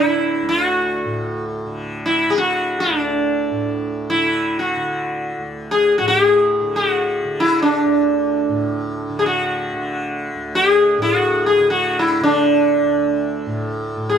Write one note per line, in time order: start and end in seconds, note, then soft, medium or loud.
0.00 0.42 D2 soft
0.00 1.05 A2 soft
0.00 1.67 D3 medium
0.00 0.48 E4 medium
0.42 2.89 D2 medium
0.49 1.43 F#4 medium
1.05 3.51 A2 medium
1.67 2.29 D3 medium
2.06 2.31 E4 medium
2.29 4.15 D3 medium
2.29 2.38 G#4 medium
2.38 2.80 F#4 medium
2.80 4.09 D4 medium
2.90 5.38 D2 medium
3.51 6.00 A2 soft
4.10 4.59 E4 medium
4.15 4.77 D3 medium
4.59 5.41 F#4 medium
4.77 6.62 D3 medium
5.39 7.85 D2 soft
5.71 5.98 G#4 medium
5.98 8.49 A2 medium
5.98 6.07 F#4 medium
6.08 6.76 G#4 medium
6.62 7.25 D3 soft
6.76 7.45 F#4 medium
7.25 9.10 D3 medium
7.40 7.62 E4 medium
7.62 8.99 D4 medium
7.86 10.35 D2 medium
8.49 10.97 A2 medium
9.10 9.74 D3 soft
9.19 9.26 G#4 medium
9.26 10.52 F#4 medium
9.74 11.60 D3 medium
10.35 12.82 D2 medium
10.55 10.98 G#4 medium
10.98 13.46 A2 medium
11.02 11.46 F#4 medium
11.46 11.70 G#4 medium
11.60 12.21 D3 medium
11.70 12.01 F#4 medium
11.99 12.23 E4 medium
12.21 14.18 D3 medium
12.21 13.03 D4 medium
12.83 14.18 D2 medium
13.46 13.96 A2 medium
13.96 14.18 A2 soft
14.09 14.17 G#4 medium